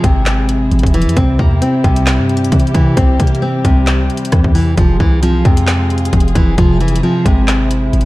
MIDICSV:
0, 0, Header, 1, 7, 480
1, 0, Start_track
1, 0, Key_signature, -4, "minor"
1, 0, Tempo, 451128
1, 1241, Time_signature, 4, 2, 24, 8
1, 8566, End_track
2, 0, Start_track
2, 0, Title_t, "String section"
2, 0, Program_c, 0, 48
2, 0, Note_on_c, 0, 48, 84
2, 0, Note_on_c, 0, 56, 77
2, 0, Note_on_c, 0, 64, 76
2, 0, Note_on_c, 0, 68, 90
2, 1202, Note_off_c, 0, 56, 0
2, 1202, Note_off_c, 0, 68, 0
2, 1240, Note_on_c, 0, 55, 77
2, 1241, Note_on_c, 0, 67, 94
2, 5038, Note_off_c, 0, 64, 0
2, 5042, Note_off_c, 0, 55, 0
2, 5042, Note_off_c, 0, 67, 0
2, 5080, Note_on_c, 0, 56, 74
2, 5080, Note_on_c, 0, 65, 77
2, 5081, Note_on_c, 0, 68, 93
2, 6981, Note_off_c, 0, 65, 0
2, 7002, Note_on_c, 0, 64, 75
2, 8566, Note_off_c, 0, 48, 0
2, 8566, Note_off_c, 0, 56, 0
2, 8566, Note_off_c, 0, 64, 0
2, 8566, Note_off_c, 0, 68, 0
2, 8566, End_track
3, 0, Start_track
3, 0, Title_t, "Synth keys"
3, 0, Program_c, 1, 88
3, 0, Control_c, 1, 64, 127
3, 0, Note_on_c, 1, 48, 95
3, 0, Note_on_c, 1, 53, 87
3, 0, Note_on_c, 1, 56, 84
3, 0, Note_on_c, 1, 60, 104
3, 46, Note_off_c, 1, 56, 0
3, 46, Note_on_c, 1, 56, 85
3, 279, Note_off_c, 1, 53, 0
3, 524, Note_off_c, 1, 48, 0
3, 760, Note_on_c, 1, 53, 88
3, 987, Note_off_c, 1, 53, 0
3, 1000, Note_on_c, 1, 53, 88
3, 1001, Note_off_c, 1, 60, 0
3, 1235, Note_on_c, 1, 48, 100
3, 1240, Note_off_c, 1, 53, 0
3, 1243, Note_off_c, 1, 56, 0
3, 1253, Control_c, 1, 64, 0
3, 1455, Control_c, 1, 64, 127
3, 1715, Note_on_c, 1, 60, 99
3, 1961, Note_on_c, 1, 55, 85
3, 2438, Note_off_c, 1, 48, 0
3, 2678, Note_on_c, 1, 52, 89
3, 2915, Note_off_c, 1, 52, 0
3, 2918, Note_off_c, 1, 60, 0
3, 2927, Note_on_c, 1, 52, 78
3, 3159, Note_on_c, 1, 48, 90
3, 3161, Note_off_c, 1, 55, 0
3, 3640, Note_on_c, 1, 60, 95
3, 3887, Note_on_c, 1, 55, 88
3, 4124, Note_off_c, 1, 52, 0
3, 4360, Note_off_c, 1, 48, 0
3, 4603, Note_on_c, 1, 52, 89
3, 4831, Note_off_c, 1, 52, 0
3, 4841, Note_off_c, 1, 60, 0
3, 4843, Note_on_c, 1, 52, 84
3, 5082, Note_off_c, 1, 52, 0
3, 5084, Note_off_c, 1, 55, 0
3, 5088, Note_on_c, 1, 48, 102
3, 5095, Control_c, 1, 64, 0
3, 5273, Control_c, 1, 64, 127
3, 5558, Note_on_c, 1, 60, 97
3, 5800, Note_on_c, 1, 56, 82
3, 6284, Note_off_c, 1, 48, 0
3, 6517, Note_on_c, 1, 53, 88
3, 6744, Note_off_c, 1, 53, 0
3, 6757, Note_on_c, 1, 53, 89
3, 6760, Note_off_c, 1, 60, 0
3, 7000, Note_off_c, 1, 56, 0
3, 7007, Note_on_c, 1, 48, 99
3, 7481, Note_on_c, 1, 60, 99
3, 7724, Note_on_c, 1, 56, 83
3, 7959, Note_off_c, 1, 53, 0
3, 8204, Note_off_c, 1, 48, 0
3, 8440, Note_on_c, 1, 53, 85
3, 8566, Note_off_c, 1, 53, 0
3, 8566, Note_off_c, 1, 56, 0
3, 8566, Note_off_c, 1, 60, 0
3, 8566, End_track
4, 0, Start_track
4, 0, Title_t, "Nylon-string guitar"
4, 0, Program_c, 2, 24
4, 41, Note_on_c, 2, 48, 88
4, 958, Note_off_c, 2, 48, 0
4, 1001, Note_on_c, 2, 52, 85
4, 1225, Note_off_c, 2, 52, 0
4, 1239, Note_on_c, 2, 60, 98
4, 1464, Note_off_c, 2, 60, 0
4, 1480, Note_on_c, 2, 58, 82
4, 1704, Note_off_c, 2, 58, 0
4, 1722, Note_on_c, 2, 60, 84
4, 1945, Note_off_c, 2, 60, 0
4, 1960, Note_on_c, 2, 48, 82
4, 2878, Note_off_c, 2, 48, 0
4, 2918, Note_on_c, 2, 52, 80
4, 3143, Note_off_c, 2, 52, 0
4, 3158, Note_on_c, 2, 60, 86
4, 3383, Note_off_c, 2, 60, 0
4, 3400, Note_on_c, 2, 58, 73
4, 3625, Note_off_c, 2, 58, 0
4, 3639, Note_on_c, 2, 60, 93
4, 3864, Note_off_c, 2, 60, 0
4, 3878, Note_on_c, 2, 48, 88
4, 4797, Note_off_c, 2, 48, 0
4, 4839, Note_on_c, 2, 52, 84
4, 5064, Note_off_c, 2, 52, 0
4, 5081, Note_on_c, 2, 53, 90
4, 5305, Note_off_c, 2, 53, 0
4, 5319, Note_on_c, 2, 52, 81
4, 5544, Note_off_c, 2, 52, 0
4, 5561, Note_on_c, 2, 53, 99
4, 5785, Note_off_c, 2, 53, 0
4, 5804, Note_on_c, 2, 48, 84
4, 6720, Note_off_c, 2, 48, 0
4, 6762, Note_on_c, 2, 52, 80
4, 6985, Note_off_c, 2, 52, 0
4, 7001, Note_on_c, 2, 53, 97
4, 7225, Note_off_c, 2, 53, 0
4, 7241, Note_on_c, 2, 52, 76
4, 7465, Note_off_c, 2, 52, 0
4, 7483, Note_on_c, 2, 53, 96
4, 7706, Note_off_c, 2, 53, 0
4, 7721, Note_on_c, 2, 48, 90
4, 8566, Note_off_c, 2, 48, 0
4, 8566, End_track
5, 0, Start_track
5, 0, Title_t, "808-style bass"
5, 0, Program_c, 3, 38
5, 40, Note_on_c, 3, 32, 103
5, 732, Note_off_c, 3, 32, 0
5, 761, Note_on_c, 3, 32, 108
5, 883, Note_off_c, 3, 32, 0
5, 887, Note_on_c, 3, 29, 106
5, 1127, Note_on_c, 3, 41, 98
5, 1143, Note_off_c, 3, 29, 0
5, 1235, Note_off_c, 3, 41, 0
5, 1241, Note_on_c, 3, 36, 115
5, 1471, Note_off_c, 3, 36, 0
5, 1481, Note_on_c, 3, 40, 111
5, 1711, Note_off_c, 3, 40, 0
5, 1960, Note_on_c, 3, 36, 110
5, 2327, Note_on_c, 3, 43, 106
5, 2343, Note_off_c, 3, 36, 0
5, 2663, Note_off_c, 3, 43, 0
5, 2682, Note_on_c, 3, 48, 106
5, 2912, Note_off_c, 3, 48, 0
5, 2920, Note_on_c, 3, 48, 104
5, 3151, Note_off_c, 3, 48, 0
5, 3161, Note_on_c, 3, 36, 111
5, 3391, Note_off_c, 3, 36, 0
5, 3401, Note_on_c, 3, 48, 106
5, 3862, Note_off_c, 3, 48, 0
5, 3880, Note_on_c, 3, 36, 108
5, 4247, Note_on_c, 3, 37, 102
5, 4263, Note_off_c, 3, 36, 0
5, 4355, Note_off_c, 3, 37, 0
5, 4601, Note_on_c, 3, 40, 108
5, 5062, Note_off_c, 3, 40, 0
5, 5081, Note_on_c, 3, 29, 114
5, 5311, Note_off_c, 3, 29, 0
5, 5321, Note_on_c, 3, 36, 111
5, 5782, Note_off_c, 3, 36, 0
5, 5800, Note_on_c, 3, 41, 107
5, 6491, Note_off_c, 3, 41, 0
5, 6521, Note_on_c, 3, 29, 106
5, 6752, Note_off_c, 3, 29, 0
5, 6760, Note_on_c, 3, 29, 104
5, 6991, Note_off_c, 3, 29, 0
5, 7001, Note_on_c, 3, 29, 114
5, 7462, Note_off_c, 3, 29, 0
5, 7720, Note_on_c, 3, 32, 105
5, 8412, Note_off_c, 3, 32, 0
5, 8441, Note_on_c, 3, 32, 109
5, 8563, Note_off_c, 3, 32, 0
5, 8566, End_track
6, 0, Start_track
6, 0, Title_t, "Downlifter"
6, 0, Program_c, 4, 103
6, 0, Note_on_c, 4, 60, 88
6, 1241, Note_off_c, 4, 60, 0
6, 8566, End_track
7, 0, Start_track
7, 0, Title_t, "Drums"
7, 40, Note_on_c, 9, 36, 108
7, 41, Note_on_c, 9, 42, 90
7, 146, Note_off_c, 9, 36, 0
7, 148, Note_off_c, 9, 42, 0
7, 278, Note_on_c, 9, 39, 94
7, 279, Note_on_c, 9, 38, 121
7, 281, Note_on_c, 9, 42, 88
7, 384, Note_off_c, 9, 39, 0
7, 386, Note_off_c, 9, 38, 0
7, 388, Note_off_c, 9, 42, 0
7, 519, Note_on_c, 9, 42, 82
7, 626, Note_off_c, 9, 42, 0
7, 760, Note_on_c, 9, 42, 49
7, 841, Note_off_c, 9, 42, 0
7, 841, Note_on_c, 9, 42, 54
7, 887, Note_on_c, 9, 36, 88
7, 920, Note_off_c, 9, 42, 0
7, 920, Note_on_c, 9, 42, 58
7, 994, Note_off_c, 9, 36, 0
7, 1001, Note_off_c, 9, 42, 0
7, 1001, Note_on_c, 9, 42, 64
7, 1081, Note_off_c, 9, 42, 0
7, 1081, Note_on_c, 9, 42, 71
7, 1161, Note_off_c, 9, 42, 0
7, 1161, Note_on_c, 9, 42, 78
7, 1241, Note_off_c, 9, 42, 0
7, 1241, Note_on_c, 9, 36, 119
7, 1241, Note_on_c, 9, 42, 87
7, 1347, Note_off_c, 9, 36, 0
7, 1347, Note_off_c, 9, 42, 0
7, 1481, Note_on_c, 9, 36, 88
7, 1587, Note_off_c, 9, 36, 0
7, 1722, Note_on_c, 9, 42, 87
7, 1829, Note_off_c, 9, 42, 0
7, 1960, Note_on_c, 9, 36, 106
7, 1961, Note_on_c, 9, 42, 52
7, 2066, Note_off_c, 9, 36, 0
7, 2068, Note_off_c, 9, 42, 0
7, 2089, Note_on_c, 9, 42, 85
7, 2196, Note_off_c, 9, 42, 0
7, 2199, Note_on_c, 9, 39, 98
7, 2200, Note_on_c, 9, 38, 121
7, 2202, Note_on_c, 9, 42, 90
7, 2305, Note_off_c, 9, 39, 0
7, 2307, Note_off_c, 9, 38, 0
7, 2309, Note_off_c, 9, 42, 0
7, 2441, Note_on_c, 9, 42, 50
7, 2521, Note_off_c, 9, 42, 0
7, 2521, Note_on_c, 9, 42, 68
7, 2601, Note_off_c, 9, 42, 0
7, 2601, Note_on_c, 9, 42, 85
7, 2681, Note_on_c, 9, 36, 102
7, 2682, Note_off_c, 9, 42, 0
7, 2682, Note_on_c, 9, 42, 78
7, 2762, Note_off_c, 9, 42, 0
7, 2762, Note_on_c, 9, 42, 62
7, 2788, Note_off_c, 9, 36, 0
7, 2841, Note_off_c, 9, 42, 0
7, 2841, Note_on_c, 9, 42, 45
7, 2920, Note_on_c, 9, 36, 94
7, 2922, Note_off_c, 9, 42, 0
7, 2922, Note_on_c, 9, 42, 74
7, 3027, Note_off_c, 9, 36, 0
7, 3028, Note_off_c, 9, 42, 0
7, 3161, Note_on_c, 9, 36, 116
7, 3161, Note_on_c, 9, 42, 90
7, 3267, Note_off_c, 9, 36, 0
7, 3267, Note_off_c, 9, 42, 0
7, 3401, Note_on_c, 9, 36, 89
7, 3401, Note_on_c, 9, 42, 80
7, 3481, Note_off_c, 9, 42, 0
7, 3481, Note_on_c, 9, 42, 60
7, 3507, Note_off_c, 9, 36, 0
7, 3561, Note_off_c, 9, 42, 0
7, 3561, Note_on_c, 9, 42, 45
7, 3667, Note_off_c, 9, 42, 0
7, 3880, Note_on_c, 9, 36, 106
7, 3881, Note_on_c, 9, 42, 88
7, 3986, Note_off_c, 9, 36, 0
7, 3988, Note_off_c, 9, 42, 0
7, 4118, Note_on_c, 9, 39, 96
7, 4120, Note_on_c, 9, 38, 120
7, 4122, Note_on_c, 9, 42, 86
7, 4225, Note_off_c, 9, 39, 0
7, 4226, Note_off_c, 9, 38, 0
7, 4228, Note_off_c, 9, 42, 0
7, 4360, Note_on_c, 9, 42, 51
7, 4441, Note_off_c, 9, 42, 0
7, 4441, Note_on_c, 9, 42, 68
7, 4521, Note_off_c, 9, 42, 0
7, 4521, Note_on_c, 9, 42, 84
7, 4598, Note_off_c, 9, 42, 0
7, 4598, Note_on_c, 9, 42, 78
7, 4601, Note_on_c, 9, 36, 100
7, 4601, Note_on_c, 9, 37, 103
7, 4704, Note_off_c, 9, 42, 0
7, 4707, Note_off_c, 9, 37, 0
7, 4708, Note_off_c, 9, 36, 0
7, 4728, Note_on_c, 9, 36, 92
7, 4834, Note_off_c, 9, 36, 0
7, 4841, Note_on_c, 9, 46, 72
7, 4948, Note_off_c, 9, 46, 0
7, 5080, Note_on_c, 9, 42, 86
7, 5081, Note_on_c, 9, 36, 122
7, 5187, Note_off_c, 9, 36, 0
7, 5187, Note_off_c, 9, 42, 0
7, 5321, Note_on_c, 9, 36, 89
7, 5427, Note_off_c, 9, 36, 0
7, 5561, Note_on_c, 9, 42, 86
7, 5668, Note_off_c, 9, 42, 0
7, 5800, Note_on_c, 9, 36, 106
7, 5800, Note_on_c, 9, 42, 52
7, 5906, Note_off_c, 9, 36, 0
7, 5906, Note_off_c, 9, 42, 0
7, 5927, Note_on_c, 9, 42, 86
7, 6034, Note_off_c, 9, 42, 0
7, 6038, Note_on_c, 9, 39, 96
7, 6039, Note_on_c, 9, 38, 118
7, 6041, Note_on_c, 9, 42, 88
7, 6144, Note_off_c, 9, 39, 0
7, 6146, Note_off_c, 9, 38, 0
7, 6148, Note_off_c, 9, 42, 0
7, 6280, Note_on_c, 9, 42, 51
7, 6361, Note_off_c, 9, 42, 0
7, 6361, Note_on_c, 9, 42, 66
7, 6441, Note_off_c, 9, 42, 0
7, 6441, Note_on_c, 9, 42, 85
7, 6520, Note_off_c, 9, 42, 0
7, 6520, Note_on_c, 9, 42, 80
7, 6521, Note_on_c, 9, 36, 98
7, 6600, Note_off_c, 9, 42, 0
7, 6600, Note_on_c, 9, 42, 62
7, 6628, Note_off_c, 9, 36, 0
7, 6681, Note_off_c, 9, 42, 0
7, 6681, Note_on_c, 9, 42, 46
7, 6760, Note_on_c, 9, 36, 92
7, 6761, Note_off_c, 9, 42, 0
7, 6761, Note_on_c, 9, 42, 74
7, 6866, Note_off_c, 9, 36, 0
7, 6868, Note_off_c, 9, 42, 0
7, 7001, Note_on_c, 9, 36, 121
7, 7001, Note_on_c, 9, 42, 87
7, 7107, Note_off_c, 9, 36, 0
7, 7107, Note_off_c, 9, 42, 0
7, 7241, Note_on_c, 9, 42, 47
7, 7321, Note_off_c, 9, 42, 0
7, 7321, Note_on_c, 9, 42, 64
7, 7401, Note_off_c, 9, 42, 0
7, 7401, Note_on_c, 9, 42, 78
7, 7507, Note_off_c, 9, 42, 0
7, 7720, Note_on_c, 9, 36, 109
7, 7722, Note_on_c, 9, 42, 87
7, 7827, Note_off_c, 9, 36, 0
7, 7828, Note_off_c, 9, 42, 0
7, 7958, Note_on_c, 9, 39, 97
7, 7960, Note_on_c, 9, 38, 120
7, 7962, Note_on_c, 9, 42, 89
7, 8065, Note_off_c, 9, 39, 0
7, 8066, Note_off_c, 9, 38, 0
7, 8068, Note_off_c, 9, 42, 0
7, 8200, Note_on_c, 9, 42, 83
7, 8306, Note_off_c, 9, 42, 0
7, 8441, Note_on_c, 9, 42, 47
7, 8521, Note_off_c, 9, 42, 0
7, 8521, Note_on_c, 9, 42, 56
7, 8566, Note_off_c, 9, 42, 0
7, 8566, End_track
0, 0, End_of_file